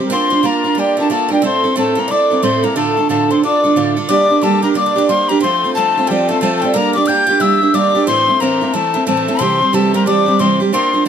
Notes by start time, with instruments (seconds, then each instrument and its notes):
Already playing: steel-string acoustic guitar G4
0.00 steel-string acoustic guitar G3 C4
0.06 bouzouki C4, accordion A#4
0.11 steel-string acoustic guitar A#3 D4 F4 A#4, accordion C5, tin whistle C6
0.30 bouzouki C4, steel-string acoustic guitar D4 F4 A#4
0.43 bouzouki A#3, steel-string acoustic guitar A#3 D4 F4 A#4, accordion A#4, tin whistle A#5
0.56 accordion A#4
0.64 steel-string acoustic guitar D4 F4 A#4, accordion A#4
0.75 bouzouki G3, steel-string acoustic guitar A#3 D4 F4, accordion G4
0.79 steel-string acoustic guitar A#4, tin whistle G5
0.97 bouzouki A3, steel-string acoustic guitar D4 F4 A#4, tin whistle A5
1.10 bouzouki A3, steel-string acoustic guitar A#3 D4 F4 A#4, accordion A4, tin whistle A5
1.29 bouzouki G3, steel-string acoustic guitar D4 F4 A#4, accordion G4
1.33 tin whistle G5
1.42 steel-string acoustic guitar A2 A3 C4 E4 A4, bouzouki C4, accordion C5, tin whistle C6
1.64 steel-string acoustic guitar C4 E4 A4
1.76 steel-string acoustic guitar A2 A3 C4 E4 A4, bouzouki A3, accordion A4, tin whistle A5
1.95 bouzouki A#3, steel-string acoustic guitar C4 E4 A4, accordion A#4
2.00 tin whistle A#5
2.08 steel-string acoustic guitar A3 C4 E4 A4, bouzouki D4, accordion D5, tin whistle D6
2.30 steel-string acoustic guitar C4 E4 A4
2.43 steel-string acoustic guitar A2 A3 C4 E4 A4, bouzouki C4, accordion C5, tin whistle C6
2.63 bouzouki A#3, steel-string acoustic guitar C4 E4 A4, accordion A#4, tin whistle A#5
2.76 steel-string acoustic guitar D2 A2 D3 D4 F4 A4, bouzouki A3, accordion A4, tin whistle A5
2.97 steel-string acoustic guitar D3 D4 F4 A4
3.09 steel-string acoustic guitar D2 A2 D3 D4 F4 A4, bouzouki A3, accordion A4, tin whistle A5
3.31 steel-string acoustic guitar D3 D4 F4 A4, bouzouki C4, accordion C5, tin whistle C6
3.43 steel-string acoustic guitar D3 D4 F4 A4, bouzouki D4, accordion D5, tin whistle D6
3.64 steel-string acoustic guitar D3 D4 F4 A4
3.76 steel-string acoustic guitar D2 A2 D3 D4 F4 A4
3.96 steel-string acoustic guitar D3 D4 F4 A4
4.09 steel-string acoustic guitar G3 A#3 D4 G4, bouzouki D4, accordion D5, tin whistle D6
4.29 steel-string acoustic guitar A#3 D4 G4
4.42 steel-string acoustic guitar G3 A#3 D4 G4, bouzouki A3, accordion A4, tin whistle A5
4.62 bouzouki A#3, steel-string acoustic guitar A#3 D4 G4, accordion A#4, tin whistle A#5
4.74 steel-string acoustic guitar G3 A#3 D4 G4, bouzouki D4, accordion D5, tin whistle D6
4.86 bouzouki D4
4.96 steel-string acoustic guitar A#3 D4 G4, bouzouki D4, accordion D5
5.09 steel-string acoustic guitar G3 A#3 D4 G4, bouzouki C4, accordion C5, tin whistle C6
5.29 bouzouki A#3, steel-string acoustic guitar A#3 D4 G4, accordion A#4, tin whistle A#5
5.40 steel-string acoustic guitar F3 A3 C4 F4, bouzouki C4, accordion C5, tin whistle C6
5.64 steel-string acoustic guitar A3 C4 F4
5.75 steel-string acoustic guitar F3 A3 C4 F4, bouzouki A3, accordion A4, tin whistle A5
5.97 steel-string acoustic guitar A3 C4 F4
6.07 steel-string acoustic guitar F3 C4, bouzouki G3, accordion G4, tin whistle G5
6.11 steel-string acoustic guitar A3 F4
6.29 bouzouki A3, steel-string acoustic guitar A3 C4 F4, accordion A4, tin whistle A5
6.41 steel-string acoustic guitar F3 A3 C4 F4, bouzouki A3, accordion A4, tin whistle A5
6.57 tin whistle G5 A5
6.62 bouzouki G3, steel-string acoustic guitar A3 C4 F4
6.74 steel-string acoustic guitar G3 A#3 D4 G4, bouzouki A#3, accordion A#4, tin whistle A#5
6.93 bouzouki D4, steel-string acoustic guitar D4 G4, accordion D5, tin whistle D6
6.98 steel-string acoustic guitar A#3
7.06 steel-string acoustic guitar G3 A#3 D4 G4, bouzouki G4, accordion G5, tin whistle G6
7.27 steel-string acoustic guitar A#3 D4 G4, bouzouki F4
7.40 steel-string acoustic guitar G3 A#3 D4 G4, bouzouki E4, accordion E5, tin whistle E6
7.61 steel-string acoustic guitar A#3 D4 G4
7.74 steel-string acoustic guitar G3 A#3 D4 G4, bouzouki D4, accordion D5, tin whistle D6
7.95 steel-string acoustic guitar A#3 D4 G4
8.07 steel-string acoustic guitar A2 E3 A3 C4 E4, bouzouki C4, accordion C5, tin whistle C6
8.28 steel-string acoustic guitar A3 C4 E4
8.40 steel-string acoustic guitar A2 E3 A3 C4 E4, bouzouki A#3, accordion A#4, tin whistle A#5
8.61 steel-string acoustic guitar A3 C4 E4
8.73 steel-string acoustic guitar E3 A3 C4 E4, bouzouki A3, accordion A4, tin whistle A5
8.94 steel-string acoustic guitar A3 C4 E4, bouzouki A#3
9.07 steel-string acoustic guitar A2 E3 A3 C4 E4, bouzouki A3, accordion A4, tin whistle A5
9.17 bouzouki A3
9.28 bouzouki A3, steel-string acoustic guitar A3 C4 E4
9.39 steel-string acoustic guitar C3 E3 G3 C4 G4, bouzouki C4, accordion C5, tin whistle C6
9.61 steel-string acoustic guitar G3 C4 G4
9.73 steel-string acoustic guitar C3 E3 G3 C4 G4, bouzouki A3, accordion A4, tin whistle A5
9.93 steel-string acoustic guitar G3 C4 G4, bouzouki A#3, accordion A#4, tin whistle A#5
10.06 steel-string acoustic guitar E3 G3 C4 G4, bouzouki D4, accordion D5, tin whistle D6
10.26 steel-string acoustic guitar G3 C4 G4, accordion D5
10.39 steel-string acoustic guitar C3 E3 G3 C4 G4, bouzouki C4, accordion C5, tin whistle C6
10.60 steel-string acoustic guitar G3 C4 G4
10.72 steel-string acoustic guitar A#3 D4 F4 A#4, bouzouki C4, accordion C5, tin whistle C6
10.93 steel-string acoustic guitar D4 F4 A#4